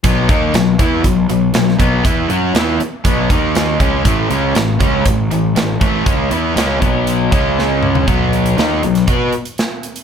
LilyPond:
<<
  \new Staff \with { instrumentName = "Distorted electric guitar" } { \clef bass \time 4/4 \key b \mixolydian \tempo 4 = 120 <b, fis b>8 <dis ais dis'>8 <b, fis>8 <e b e'>8 <b, fis>8 <b, fis>8 <b, fis>8 <b, fis b>8 | <e b e'>8 <fis cis' fis'>8 <e b e'>8 r8 <b, fis b>8 <dis ais dis'>4 <cis gis cis'>8 | <a, e a>8 <cis gis cis'>8 <a, e>8 <cis gis cis'>8 <a, e>8 <a, e>8 <a, e>8 <a, e a>8 | <cis gis cis'>8 <e b e'>8 <cis gis cis'>8 <b, fis b>4 <cis gis cis'>4. |
<b, fis b>4 <dis ais dis'>8 <b, fis>8 <b fis' b'>8 r4. | }
  \new Staff \with { instrumentName = "Overdriven electric guitar" } { \clef bass \time 4/4 \key b \mixolydian <b, fis b>8 <dis ais dis'>8 <b, fis>8 <e b e'>8 <b, fis>8 <b, fis>8 <b, fis>8 <b, fis b>8 | <e b e'>8 <fis cis' fis'>8 <e b e'>8 r8 <b, fis b>8 <dis ais dis'>4 <cis gis cis'>8 | <a, e a>8 <cis gis cis'>8 <a, e>8 <cis gis cis'>8 <a, e>8 <a, e>8 <a, e>8 <a, e a>8 | <cis gis cis'>8 <e b e'>8 <cis gis cis'>8 <b, fis b>4 <cis gis cis'>4. |
<b, fis b>4 <dis ais dis'>8 <b, fis>8 <b fis' b'>8 r4. | }
  \new Staff \with { instrumentName = "Picked electric bass" } { \clef bass \time 4/4 \key b \mixolydian b,,8 dis,8 b,,8 e,8 b,,8 b,,8 b,,8 b,,8 | e,8 fis,8 e,8 r8 b,,8 dis,4 cis,8 | a,,8 cis,8 a,,8 cis,8 a,,8 a,,8 a,,8 a,,8 | cis,8 e,8 cis,8 b,,4 cis,4. |
b,,4 dis,8 b,,8 b,8 r4. | }
  \new DrumStaff \with { instrumentName = "Drums" } \drummode { \time 4/4 <hh bd>8 <hh bd>8 <hh sn>8 <hh bd>8 <hh bd>8 hh8 <hh sn>16 sn16 <hh bd>8 | <hh bd>8 hh8 <hh sn>8 hh8 <hh bd>8 <hh bd>8 <hh sn>8 <hh bd>8 | <hh bd>8 hh8 <hh sn>8 <hh bd>8 <hh bd>8 hh8 <hh sn>8 <hh bd>8 | <hh bd>8 hh8 <hh sn>8 <hh bd>8 hh8 <hh bd>8 sn8 toml16 tomfh16 |
<hh bd>8 hh16 hh16 <hh sn>8 hh16 <hh sn>16 <hh bd>8 hh16 hh16 <hh sn>8 hh16 hh16 | }
>>